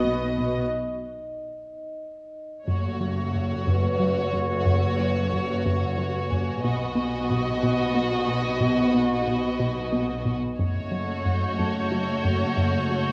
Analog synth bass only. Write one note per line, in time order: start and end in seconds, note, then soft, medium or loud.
0.05 0.24 B3 soft
0.38 0.57 B2 soft
2.67 2.87 F#2 medium
3.00 3.20 F#3 soft
3.34 3.53 F#2 medium
3.67 3.87 F#2 medium
4.00 4.19 F#3 medium
4.33 4.53 F#2 medium
4.65 4.85 F#2 medium
4.99 5.18 F#3 soft
5.33 5.52 F#2 medium
5.65 5.85 F#2 medium
5.97 6.17 F#3 medium
6.31 6.50 F#2 medium
6.64 6.83 B2 medium
6.95 7.15 B3 soft
7.30 7.49 B2 medium
7.63 7.82 B2 medium
7.95 8.15 B3 soft
8.28 8.48 B2 soft
8.60 8.80 B2 medium
8.94 9.14 B3 soft
9.27 9.47 B2 soft
9.60 9.79 B2 medium
9.93 10.12 B3 soft
10.26 10.45 B2 soft
10.59 10.79 F#2 medium
10.92 11.11 F#3 soft
11.25 11.45 F#2 medium
11.59 11.78 F#2 medium
11.91 12.11 F#3 medium
12.24 12.44 F#2 medium
12.57 12.76 F#2 medium
12.91 13.10 F#3 soft